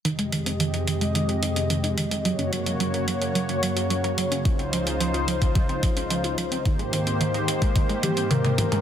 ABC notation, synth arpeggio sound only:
X:1
M:4/4
L:1/16
Q:1/4=109
K:Fm
V:1 name="Synth arpeggio sound" clef=bass
E, A, E, C E, E E, A, E, A, E, C E, E E, A, | _G, D G, _G G, B G, D G, D G, G G, B G, D | F, C F, D F, F F, C F, C F, D F, F F, C | E, A, E, C E, E E, A, E, A, E, C E, E E, A, |]